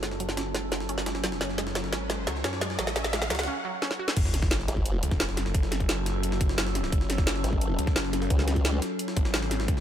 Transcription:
0.00 1.05 F#1 loud
0.00 3.44 F#3 medium
0.00 0.13 G#3 medium
0.00 3.44 C#4 medium
0.00 3.44 A4 medium
0.00 snare medium
0.00 closed hi-hat medium
0.00 riser medium
0.11 snare soft
0.20 0.35 F#3 medium
0.20 closed hi-hat medium
0.29 snare medium
0.29 closed hi-hat soft
0.37 0.47 C#4 medium
0.37 snare loud
0.37 closed hi-hat medium
0.55 0.65 G#3 medium
0.55 snare medium
0.55 closed hi-hat medium
0.72 0.87 F#3 medium
0.72 snare medium
0.72 closed hi-hat medium
0.80 snare medium
0.89 0.99 C#4 medium
0.89 closed hi-hat medium
0.89 closed hi-hat loud
0.98 snare medium
1.06 1.39 F#1 medium
1.06 1.16 G#3 medium
1.06 snare loud
1.06 closed hi-hat medium
1.15 snare medium
1.24 1.39 F#3 medium
1.24 snare medium
1.24 closed hi-hat medium
1.32 snare medium
1.41 1.91 F#1 loud
1.41 1.51 C#4 medium
1.41 snare medium
1.41 closed hi-hat medium
1.49 snare soft
1.58 1.68 G#3 medium
1.58 snare medium
1.58 closed hi-hat medium
1.67 snare medium
1.75 1.90 F#3 medium
1.75 snare loud
1.75 snare medium
1.75 closed hi-hat medium
1.84 snare soft
1.92 2.26 G#1 loud
1.92 2.03 C#4 medium
1.92 snare loud
1.92 snare medium
1.92 closed hi-hat medium
2.10 2.20 G#3 medium
2.10 snare loud
2.10 snare medium
2.10 closed hi-hat medium
2.27 2.43 C#2 loud
2.27 2.42 F#3 medium
2.27 snare medium
2.27 closed hi-hat medium
2.36 snare soft
2.44 2.77 F#2 medium
2.44 2.54 C#4 medium
2.44 snare medium
2.44 snare loud
2.44 closed hi-hat medium
2.53 snare soft
2.61 2.72 G#3 medium
2.61 snare medium
2.61 closed hi-hat medium
2.70 snare soft
2.79 3.29 A1 loud
2.79 2.94 F#3 medium
2.79 snare medium
2.79 closed hi-hat medium
2.87 snare medium
2.87 snare soft
2.96 3.06 C#4 medium
2.96 snare loud
2.96 closed hi-hat medium
3.04 snare medium
3.04 closed hi-hat soft
3.13 3.23 G#3 medium
3.13 snare loud
3.13 closed hi-hat medium
3.22 snare medium
3.30 3.48 C#2 loud
3.30 3.45 F#3 medium
3.30 snare loud
3.30 snare medium
3.30 closed hi-hat medium
3.35 snare medium
3.35 closed hi-hat medium
3.39 snare medium
3.39 closed hi-hat medium
3.43 snare medium
3.43 closed hi-hat medium
3.48 3.58 C#4 medium
3.65 3.75 F#3 medium
3.82 3.92 C#4 medium
3.82 snare medium
3.91 snare medium
3.99 4.05 F#4 medium
4.08 snare medium
4.17 4.67 F#1 loud
4.17 9.64 F#3 medium
4.17 9.80 C#4 medium
4.17 9.64 A4 medium
4.17 kick loud
4.17 closed hi-hat medium
4.17 crash loud
4.17 sub drop medium
4.25 snare soft
4.34 snare soft
4.34 closed hi-hat medium
4.42 kick loud
4.42 snare medium
4.51 snare loud
4.51 closed hi-hat medium
4.60 snare soft
4.68 5.01 G#1 loud
4.68 snare medium
4.68 closed hi-hat loud
4.68 closed hi-hat medium
4.77 kick medium
4.86 closed hi-hat medium
5.03 5.19 C#2 medium
5.03 closed hi-hat loud
5.03 closed hi-hat medium
5.11 kick loud
5.11 snare soft
5.20 6.57 F#1 medium
5.20 snare loud
5.20 closed hi-hat medium
5.29 snare medium
5.37 snare medium
5.37 closed hi-hat loud
5.37 closed hi-hat medium
5.46 snare soft
5.54 kick loud
5.54 closed hi-hat medium
5.63 snare soft
5.72 snare medium
5.72 closed hi-hat medium
5.72 closed hi-hat loud
5.80 kick medium
5.80 closed hi-hat soft
5.89 snare loud
5.89 closed hi-hat medium
6.06 snare medium
6.06 closed hi-hat loud
6.06 closed hi-hat medium
6.23 closed hi-hat medium
6.32 snare medium
6.41 kick loud
6.41 closed hi-hat loud
6.41 closed hi-hat medium
6.49 snare medium
6.58 6.91 F#1 loud
6.58 snare loud
6.58 closed hi-hat medium
6.67 snare medium
6.75 snare medium
6.75 closed hi-hat loud
6.75 closed hi-hat medium
6.84 snare medium
6.92 7.43 F#1 loud
6.92 kick loud
6.92 closed hi-hat medium
7.01 snare soft
7.10 snare medium
7.10 closed hi-hat medium
7.18 kick loud
7.18 snare medium
7.27 snare loud
7.27 closed hi-hat medium
7.36 snare soft
7.44 7.77 G#1 medium
7.44 snare medium
7.44 closed hi-hat medium
7.53 kick medium
7.61 closed hi-hat medium
7.79 7.94 C#2 loud
7.79 closed hi-hat medium
7.87 kick loud
7.87 snare soft
7.96 8.29 F#1 medium
7.96 snare loud
7.96 closed hi-hat medium
8.05 snare soft
8.13 snare medium
8.13 closed hi-hat medium
8.22 snare medium
8.30 8.81 C#2 loud
8.30 kick loud
8.30 closed hi-hat medium
8.39 snare soft
8.48 snare soft
8.48 closed hi-hat medium
8.56 kick medium
8.56 closed hi-hat soft
8.65 snare loud
8.65 closed hi-hat medium
8.82 snare medium
8.82 closed hi-hat medium
8.99 closed hi-hat medium
9.08 snare medium
9.16 9.67 G#1 loud
9.16 kick loud
9.16 closed hi-hat medium
9.25 snare medium
9.34 snare loud
9.34 closed hi-hat medium
9.42 snare medium
9.42 snare soft
9.51 snare medium
9.51 closed hi-hat medium
9.60 snare medium
9.68 9.80 C#2 loud
9.68 9.80 F3 medium
9.68 9.80 G#4 medium
9.68 kick loud
9.68 closed hi-hat medium
9.77 snare soft

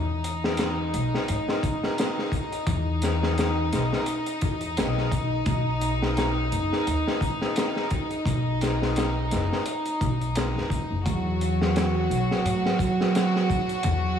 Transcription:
0.00 0.90 E2 medium
0.00 11.07 D#4 medium
0.24 closed hi-hat medium
0.44 snare medium
0.57 snare loud
0.57 closed hi-hat medium
0.94 1.11 B1 medium
0.94 closed hi-hat medium
1.14 snare soft
1.28 1.46 A2 medium
1.28 closed hi-hat medium
1.49 snare medium
1.63 kick medium
1.63 closed hi-hat medium
1.83 snare soft
1.98 snare loud
1.98 closed hi-hat medium
2.19 snare soft
2.32 kick medium
2.32 closed hi-hat medium
2.52 closed hi-hat soft
2.67 3.69 E2 medium
2.67 kick medium
2.67 closed hi-hat medium
3.02 snare medium
3.02 closed hi-hat medium
3.23 snare medium
3.38 snare loud
3.38 closed hi-hat medium
3.72 3.90 B1 medium
3.72 snare soft
3.72 closed hi-hat medium
3.93 snare soft
4.06 closed hi-hat medium
4.26 closed hi-hat soft
4.41 4.79 E2 medium
4.41 kick medium
4.41 closed hi-hat medium
4.61 closed hi-hat soft
4.77 5.44 B1 medium
4.77 snare loud
4.77 closed hi-hat medium
4.98 snare soft
5.12 kick medium
5.12 closed hi-hat medium
5.46 6.48 B1 loud
5.46 kick loud
5.46 closed hi-hat medium
5.81 closed hi-hat medium
6.02 snare medium
6.17 snare loud
6.17 closed hi-hat medium
6.52 6.69 F#1 medium
6.52 closed hi-hat medium
6.73 snare soft
6.87 7.04 D#2 medium
6.87 closed hi-hat medium
7.07 snare soft
7.21 kick medium
7.21 closed hi-hat medium
7.41 snare soft
7.56 snare loud
7.56 closed hi-hat medium
7.76 snare soft
7.90 kick medium
7.90 closed hi-hat medium
8.10 closed hi-hat soft
8.25 9.27 B1 medium
8.25 kick medium
8.25 closed hi-hat medium
8.61 snare medium
8.61 closed hi-hat medium
8.82 snare medium
8.96 snare loud
8.96 closed hi-hat medium
9.31 9.48 F#1 medium
9.31 snare soft
9.31 closed hi-hat medium
9.52 snare soft
9.65 closed hi-hat medium
9.85 closed hi-hat soft
10.01 10.52 B1 medium
10.01 kick medium
10.01 closed hi-hat medium
10.21 closed hi-hat soft
10.35 snare loud
10.35 closed hi-hat medium
10.56 10.85 F#1 medium
10.56 snare soft
10.70 kick medium
10.70 closed hi-hat medium
10.90 11.04 F#1 medium
11.05 12.07 E2 loud
11.05 14.19 F#3 medium
11.05 14.19 F#4 medium
11.05 kick loud
11.05 closed hi-hat medium
11.41 closed hi-hat medium
11.62 snare medium
11.76 snare loud
11.76 closed hi-hat medium
12.10 12.27 B1 medium
12.10 closed hi-hat medium
12.31 snare soft
12.45 12.62 A2 medium
12.45 closed hi-hat medium
12.66 snare soft
12.79 kick medium
12.79 closed hi-hat medium
13.01 snare soft
13.15 snare loud
13.15 closed hi-hat medium
13.36 snare soft
13.50 kick medium
13.50 closed hi-hat medium
13.69 closed hi-hat soft
13.83 14.19 E2 loud
13.83 kick loud
13.83 closed hi-hat medium

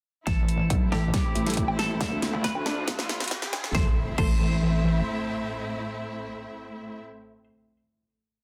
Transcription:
0.27 0.69 A1 loud
0.27 3.71 A3 medium
0.27 3.71 C4 medium
0.27 3.71 E4 medium
0.27 0.83 A4 loud
0.27 kick medium
0.27 snare soft
0.27 closed hi-hat medium
0.27 riser medium
0.49 closed hi-hat medium
0.70 0.90 B1 loud
0.70 kick medium
0.70 closed hi-hat medium
0.92 1.12 A1 medium
0.92 0.98 A3 medium
0.92 0.99 E4 medium
0.92 1.70 G4 medium
0.92 0.98 A4 loud
0.92 snare medium
1.14 kick loud
1.14 snare medium
1.14 closed hi-hat medium
1.35 1.99 A1 medium
1.35 closed hi-hat medium
1.46 1.57 A3 medium
1.46 1.57 E4 medium
1.46 1.57 A4 medium
1.46 snare medium
1.46 closed hi-hat soft
1.50 closed hi-hat medium
1.54 kick medium
1.54 closed hi-hat medium
1.57 closed hi-hat medium
1.68 low woodblock medium
1.79 2.36 A4 loud
1.79 snare medium
1.79 closed hi-hat medium
2.01 2.10 D2 loud
2.01 3.73 D3 medium
2.01 3.73 F4 medium
2.01 kick loud
2.01 snare medium
2.01 closed hi-hat medium
2.12 2.32 D2 loud
2.22 snare medium
2.22 closed hi-hat medium
2.33 2.53 D2 loud
2.44 3.66 B4 medium
2.44 kick medium
2.44 snare medium
2.44 closed hi-hat medium
2.55 2.97 D2 loud
2.55 low woodblock medium
2.66 2.72 D4 medium
2.66 2.72 A4 medium
2.66 2.72 D5 medium
2.66 snare medium
2.88 kick medium
2.88 snare medium
2.88 closed hi-hat medium
2.99 3.29 A1 loud
2.99 snare medium
3.09 snare loud
3.09 closed hi-hat medium
3.20 snare medium
3.20 closed hi-hat soft
3.24 closed hi-hat medium
3.28 kick loud
3.28 snare loud
3.28 closed hi-hat medium
3.31 closed hi-hat medium
3.42 snare medium
3.53 3.73 D2 loud
3.53 snare loud
3.53 closed hi-hat medium
3.53 low woodblock medium
3.64 snare medium
3.75 3.87 A1 loud
3.75 7.00 A2 medium
3.75 3.87 A3 medium
3.75 7.00 A3 medium
3.75 7.00 C4 medium
3.75 3.87 E4 medium
3.75 7.00 E4 medium
3.75 3.87 A4 medium
3.75 3.87 C5 medium
3.75 7.00 E5 medium
3.75 kick loud
3.75 snare medium
3.75 impact medium
4.18 5.01 A1 loud
4.18 7.44 A3 medium
4.18 7.44 E4 medium
4.18 7.44 A4 medium
4.18 7.44 C5 medium
4.18 kick loud
4.18 crash medium

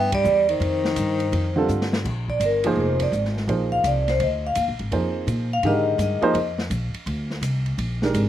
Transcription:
0.00 0.24 G2 medium
0.00 0.18 E3 soft
0.00 0.18 A3 soft
0.00 0.12 B3 medium
0.00 0.18 D4 soft
0.00 0.18 G4 soft
0.00 0.13 G5 medium
0.12 0.46 G3 medium
0.12 0.51 D5 medium
0.12 kick medium
0.12 ride medium
0.25 0.59 E2 medium
0.25 hi-hat pedal medium
0.49 1.65 D#3 medium
0.49 1.66 C5 medium
0.49 ride soft
0.60 0.95 F2 medium
0.60 ride medium
0.85 snare medium
0.96 1.32 G2 medium
0.96 hi-hat pedal medium
0.96 ride medium
1.20 ride soft
1.32 1.67 F2 medium
1.32 ride medium
1.56 2.02 D3 medium
1.56 2.02 G3 medium
1.56 2.03 C4 medium
1.56 2.03 F4 medium
1.56 2.03 A4 medium
1.69 2.04 G2 medium
1.69 hi-hat pedal medium
1.81 snare medium
1.93 snare medium
2.05 2.39 A#1 medium
2.05 kick medium
2.05 crash medium
2.28 2.41 D5 medium
2.28 kick medium
2.40 2.75 G1 medium
2.40 hi-hat pedal soft
2.40 ride medium
2.45 2.66 A#4 medium
2.64 3.10 F3 medium
2.64 3.11 A#3 medium
2.64 3.11 D#4 medium
2.64 3.11 G#4 medium
2.64 2.78 G#4 medium
2.64 3.11 C5 medium
2.64 ride medium
2.76 3.11 F1 medium
2.81 3.01 C5 medium
3.00 3.13 D5 medium
3.00 kick soft
3.00 ride medium
3.12 3.47 G#1 medium
3.12 hi-hat pedal soft
3.25 snare soft
3.37 snare soft
3.47 3.83 A#1 medium
3.47 4.48 F3 medium
3.47 4.49 A#3 soft
3.47 4.49 D#4 soft
3.47 4.49 G#4 soft
3.47 4.49 C5 medium
3.47 ride medium
3.72 3.84 F5 medium
3.72 kick soft
3.84 4.19 C2 medium
3.84 4.08 D5 medium
3.84 hi-hat pedal medium
3.84 ride medium
4.08 4.21 C5 medium
4.08 snare soft
4.08 ride soft
4.20 4.55 D2 medium
4.20 4.44 D#5 medium
4.20 ride medium
4.47 4.53 F5 medium
4.55 4.70 D#2 medium
4.55 hi-hat pedal soft
4.55 ride medium
4.68 4.79 A#1 medium
4.79 4.91 G#1 medium
4.79 ride soft
4.91 5.26 F2 medium
4.91 5.46 F3 soft
4.91 5.46 A#3 soft
4.91 5.47 D#4 soft
4.91 5.47 G#4 soft
4.91 5.47 C5 medium
4.91 ride medium
5.27 5.62 A#2 medium
5.27 hi-hat pedal soft
5.27 ride medium
5.53 5.65 F5 medium
5.63 5.98 G#2 medium
5.63 6.19 D3 medium
5.63 6.19 D#3 medium
5.63 6.19 G#3 medium
5.63 6.19 G4 medium
5.63 6.20 A#4 medium
5.63 5.99 D#5 medium
5.63 ride medium
5.98 6.21 G2 medium
5.98 hi-hat pedal medium
5.98 ride medium
6.02 6.56 D#5 medium
6.22 6.34 F3 medium
6.22 6.34 A#3 medium
6.22 6.34 D#4 medium
6.22 6.34 G#4 medium
6.22 6.34 C5 medium
6.22 muted upright bass stroke soft
6.22 ride soft
6.34 6.70 F2 medium
6.34 ride medium
6.58 snare medium
6.70 6.93 A#1 medium
6.70 hi-hat pedal soft
6.70 ride medium
6.94 muted upright bass stroke soft
6.94 ride soft
7.06 7.41 D2 medium
7.06 ride medium
7.30 snare soft
7.41 7.77 C2 medium
7.41 hi-hat pedal medium
7.41 ride medium
7.66 ride soft
7.78 8.13 A#1 medium
7.78 ride medium
8.02 8.29 D#3 medium
8.02 8.29 G#3 medium
8.02 8.29 D4 soft
8.02 8.29 G4 soft
8.02 8.29 A#4 medium
8.02 snare soft
8.14 8.29 G#1 medium
8.14 hi-hat pedal medium
8.14 ride medium

